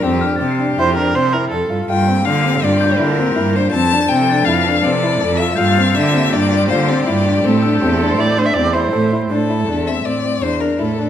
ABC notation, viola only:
X:1
M:5/4
L:1/16
Q:1/4=162
K:Aphr
V:1 name="Viola"
z8 c2 B2 c2 B2 A3 z | z16 z4 | z16 z4 | z16 z4 |
z4 G2 A c d2 c e d2 c6 | z16 z4 |]